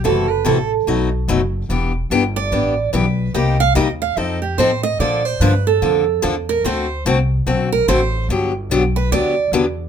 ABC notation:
X:1
M:4/4
L:1/8
Q:"Swing" 1/4=145
K:G
V:1 name="Steel-string acoustic guitar"
A B A z4 z | z3 d3 B2 | _e =f e f e G c e | d c B A3 z _B |
c2 z3 _B c2 | z3 B d2 z2 |]
V:2 name="Steel-string acoustic guitar"
[C,E,A,EF] z [C,E,A,EF] z [B,,F,A,^DF] z [B,,F,A,DF] z | [E,B,DG] z [E,B,DG] z [E,B,DG] z [E,B,DG] z | [C,G,_B,_EG] z [C,G,B,EG] z [=F,CEA] z [F,CEA] z | [D,=F,_B,DA] z [D,F,B,DA] z [D,F,B,DA] z [D,F,B,DA] z |
[D,A,CFA] z [D,A,CFA] z [D,A,CFA] z [D,A,CFA] z | [D,F,B,DG] z [D,F,B,DG] z [D,F,B,DG] z [D,F,B,DG] z |]
V:3 name="Upright bass" clef=bass
F,,,2 A,,,2 B,,,2 F,,,2 | E,,,2 G,,,2 A,,,2 B,,,2 | C,,2 _E,,2 =F,,2 A,,2 | _B,,2 G,,2 =F,,2 E,,2 |
D,,2 C,,2 B,,,2 A,,,2 | G,,,2 B,,,2 D,,2 E,,2 |]